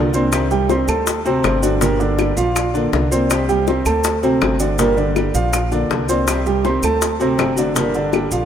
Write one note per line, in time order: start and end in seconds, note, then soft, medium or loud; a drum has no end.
0.00 0.83 C2 medium
0.00 0.13 F3 medium
0.00 0.13 A#3 medium
0.00 0.14 D4 medium
0.00 0.12 F4 medium
0.13 0.32 A#3 medium
0.13 0.45 C4 medium
0.13 0.32 D4 medium
0.13 0.32 F4 medium
0.13 0.45 C5 medium
0.13 0.45 C6 medium
0.13 high bongo soft
0.13 maracas medium
0.32 0.69 C3 medium
0.32 0.68 D#3 medium
0.32 0.69 G3 medium
0.32 0.70 C4 medium
0.32 0.70 G4 medium
0.32 high bongo medium
0.32 claves medium
0.32 maracas medium
0.51 0.66 G3 medium
0.51 0.66 G4 medium
0.51 0.67 G5 medium
0.51 high bongo soft
0.51 maracas soft
0.69 1.06 D#3 medium
0.69 1.06 G3 medium
0.69 0.85 C4 medium
0.69 1.06 C4 medium
0.69 1.07 G4 medium
0.69 0.85 C5 medium
0.69 0.85 C6 medium
0.69 high bongo medium
0.69 maracas soft
0.88 1.40 D2 medium
0.88 1.19 A3 medium
0.88 1.19 A4 medium
0.88 1.19 A5 medium
0.88 high bongo soft
0.88 claves medium
0.88 maracas medium
1.07 muted nylon-string guitar stroke medium
1.07 high bongo medium
1.07 maracas medium
1.25 1.56 C3 medium
1.25 1.43 A3 medium
1.25 1.56 C4 medium
1.25 1.43 C4 medium
1.25 1.43 F#4 medium
1.25 1.56 C5 medium
1.25 high bongo soft
1.25 maracas soft
1.43 2.31 G1 medium
1.43 1.61 D3 medium
1.43 1.62 A3 medium
1.43 1.62 C4 medium
1.43 1.61 F#4 medium
1.43 high bongo medium
1.43 low bongo medium
1.43 claves medium
1.43 maracas soft
1.63 1.78 D3 medium
1.63 1.82 A3 medium
1.63 1.81 C4 medium
1.63 1.78 D4 medium
1.63 1.81 F#4 medium
1.63 1.78 D5 medium
1.63 maracas medium
1.81 1.97 A#2 medium
1.81 2.18 D3 medium
1.81 2.17 G3 medium
1.81 1.97 A#3 medium
1.81 2.17 A#3 medium
1.81 2.18 D4 medium
1.81 2.19 G4 medium
1.81 1.97 A#4 medium
1.81 high bongo medium
1.81 maracas medium
2.00 2.30 D3 medium
2.00 2.30 D4 medium
2.00 2.31 D5 medium
2.00 high bongo soft
2.00 maracas soft
2.18 2.55 G3 soft
2.18 2.55 A#3 medium
2.18 2.55 D4 medium
2.18 2.56 G4 medium
2.18 high bongo medium
2.18 claves medium
2.18 maracas soft
2.37 2.89 A#1 medium
2.37 2.67 F3 medium
2.37 2.68 F4 medium
2.37 2.68 F5 medium
2.37 maracas medium
2.55 muted nylon-string guitar stroke medium
2.55 high bongo medium
2.55 claves medium
2.55 maracas medium
2.74 3.05 D3 medium
2.74 2.92 A#3 medium
2.74 3.05 D4 medium
2.74 2.93 D4 medium
2.74 2.92 F4 medium
2.74 3.05 D5 medium
2.74 high bongo soft
2.74 maracas soft
2.92 3.80 C2 medium
2.92 3.10 F3 soft
2.92 3.11 A#3 medium
2.92 3.11 D4 medium
2.92 3.10 F4 medium
2.92 high bongo medium
2.92 low bongo medium
2.92 maracas soft
3.11 3.30 A#3 medium
3.11 3.42 C4 medium
3.11 3.30 D4 medium
3.11 3.29 F4 medium
3.11 3.42 C5 medium
3.11 3.42 C6 medium
3.11 high bongo soft
3.11 maracas medium
3.30 3.67 C3 medium
3.30 3.66 D#3 medium
3.30 3.67 G3 medium
3.30 3.68 C4 medium
3.30 3.68 G4 medium
3.30 high bongo medium
3.30 claves medium
3.30 maracas medium
3.49 3.64 G3 medium
3.49 3.64 G4 medium
3.49 3.64 G5 medium
3.49 high bongo soft
3.49 maracas soft
3.67 4.04 D#3 soft
3.67 4.04 G3 soft
3.67 3.83 C4 medium
3.67 4.04 C4 medium
3.67 4.05 G4 medium
3.67 3.83 C5 medium
3.67 3.83 C6 medium
3.67 high bongo medium
3.67 maracas soft
3.85 4.38 D2 medium
3.85 4.16 A3 medium
3.85 4.17 A4 medium
3.85 4.17 A5 medium
3.85 high bongo soft
3.85 claves medium
3.85 maracas medium
4.04 muted nylon-string guitar stroke medium
4.04 high bongo medium
4.04 maracas medium
4.23 4.54 C3 medium
4.23 4.41 A3 medium
4.23 4.54 C4 medium
4.23 4.42 C4 medium
4.23 4.41 F#4 medium
4.23 4.54 C5 medium
4.23 high bongo soft
4.23 maracas soft
4.41 5.29 G1 medium
4.41 4.59 D3 medium
4.41 4.60 A3 medium
4.41 4.60 C4 medium
4.41 4.59 F#4 medium
4.41 high bongo medium
4.41 low bongo medium
4.41 claves medium
4.41 maracas soft
4.60 4.75 D3 medium
4.60 4.79 A3 medium
4.60 4.79 C4 medium
4.60 4.76 D4 medium
4.60 4.78 F#4 medium
4.60 4.76 D5 medium
4.60 maracas medium
4.78 4.94 A#2 medium
4.78 5.15 D3 medium
4.78 5.14 G3 medium
4.78 4.94 A#3 medium
4.78 5.15 A#3 medium
4.78 5.16 D4 medium
4.78 5.16 G4 medium
4.78 4.94 A#4 medium
4.78 high bongo medium
4.78 maracas medium
4.97 5.28 D3 medium
4.97 5.28 D4 medium
4.97 5.28 D5 medium
4.97 high bongo soft
4.97 maracas soft
5.16 5.52 G3 medium
5.16 5.52 A#3 soft
5.16 5.52 D4 medium
5.16 5.53 G4 medium
5.16 high bongo medium
5.16 claves medium
5.16 maracas soft
5.34 5.86 A#1 medium
5.34 5.65 F3 medium
5.34 5.65 F4 medium
5.34 5.65 F5 medium
5.34 maracas medium
5.53 muted nylon-string guitar stroke medium
5.53 high bongo medium
5.53 claves medium
5.53 maracas medium
5.72 6.02 D3 medium
5.72 5.90 A#3 medium
5.72 6.02 D4 medium
5.72 5.90 D4 medium
5.72 5.90 F4 medium
5.72 6.03 D5 medium
5.72 high bongo soft
5.72 maracas soft
5.90 6.77 C2 medium
5.90 6.08 F3 medium
5.90 6.09 A#3 medium
5.90 6.09 D4 medium
5.90 6.08 F4 medium
5.90 high bongo medium
5.90 low bongo medium
5.90 maracas soft
6.09 6.28 A#3 medium
6.09 6.39 C4 medium
6.09 6.28 D4 medium
6.09 6.27 F4 medium
6.09 6.40 C5 medium
6.09 6.40 C6 medium
6.09 high bongo soft
6.09 maracas medium
6.27 6.64 C3 medium
6.27 6.64 D#3 medium
6.27 6.65 G3 medium
6.27 6.65 C4 medium
6.27 6.65 G4 medium
6.27 high bongo medium
6.27 claves medium
6.27 maracas medium
6.46 6.61 G3 medium
6.46 6.61 G4 medium
6.46 6.62 G5 medium
6.46 high bongo soft
6.46 maracas soft
6.65 7.01 D#3 medium
6.65 7.02 G3 medium
6.65 6.80 C4 medium
6.65 7.01 C4 medium
6.65 7.02 G4 medium
6.65 6.80 C5 medium
6.65 6.80 C6 medium
6.65 high bongo medium
6.65 maracas soft
6.83 7.35 D2 medium
6.83 7.14 A3 medium
6.83 7.14 A4 medium
6.83 7.14 A5 medium
6.83 high bongo soft
6.83 claves medium
6.83 maracas medium
7.02 muted nylon-string guitar stroke medium
7.02 high bongo medium
7.02 maracas medium
7.20 7.51 C3 medium
7.20 7.37 A3 medium
7.20 7.38 C4 medium
7.20 7.51 C4 medium
7.20 7.38 F#4 medium
7.20 7.51 C5 medium
7.20 high bongo soft
7.20 maracas soft
7.38 8.26 G1 medium
7.38 7.56 D3 medium
7.38 7.57 A3 medium
7.38 7.56 C4 medium
7.38 7.55 F#4 medium
7.38 high bongo medium
7.38 low bongo medium
7.38 claves medium
7.38 maracas soft
7.56 7.73 D3 medium
7.56 7.75 A3 medium
7.56 7.75 C4 medium
7.56 7.73 D4 medium
7.56 7.75 F#4 medium
7.56 7.74 D5 medium
7.56 maracas medium
7.74 7.92 A#2 medium
7.74 8.12 D3 medium
7.74 8.11 G3 medium
7.74 8.12 A#3 medium
7.74 7.92 A#3 medium
7.74 8.13 D4 medium
7.74 8.13 G4 medium
7.74 7.92 A#4 medium
7.74 high bongo medium
7.74 maracas medium
7.94 8.25 D3 medium
7.94 8.26 D4 medium
7.94 8.26 D5 medium
7.94 high bongo soft
7.94 maracas soft
8.12 8.45 G3 medium
8.12 8.45 A#3 medium
8.12 8.45 D4 medium
8.12 8.45 G4 medium
8.12 high bongo medium
8.12 claves medium
8.12 maracas soft
8.31 8.45 A#1 medium
8.31 8.45 F3 medium
8.31 8.45 F4 medium
8.31 8.45 F5 medium
8.31 maracas medium